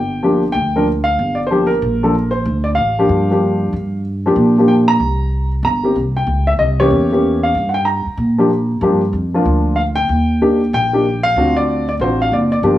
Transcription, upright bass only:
Already playing: G1
0.54 D2
1.19 G1
1.82 A#1
2.45 D2
2.78 A1
3.09 G2
3.73 G2
4.36 A#2
5.00 C2
5.63 G1
5.96 C2
6.27 C#2
6.59 C2
6.91 E2
7.55 G2
8.06 muted upright bass stroke
8.17 A#2
8.81 G2
9.13 F2
9.45 D2
10.09 D#2
10.73 A#1
11.36 D2
12.00 A1
12.32 F#1
12.63 G1

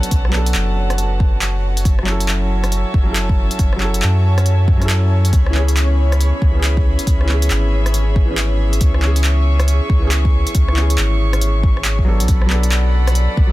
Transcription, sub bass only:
0.12 B1
0.55 F#1
1.85 F#1
2.94 F#1
3.59 F#1
4.03 F#2
5.33 C#2
6.42 C#2
7.07 C#2
7.50 G#1
8.81 C#2
9.90 C#2
10.55 C#2
10.98 G#1
12.07 G#1
12.20 B1
12.29 B1
13.37 B1

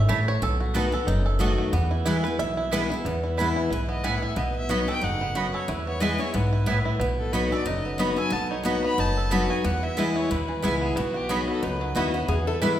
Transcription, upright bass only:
0.10 A1
0.42 B1
1.07 F#1
1.72 E2
2.39 B1
3.05 E2
3.71 B1
4.37 B1
5.03 F#1
5.68 E2
6.34 B1
7.00 B1
7.66 F#1
8.31 B1
8.98 F#1
9.65 E2
10.31 D#2
10.64 C#2
10.97 B1
11.62 C#2
11.95 D#2
12.28 E2

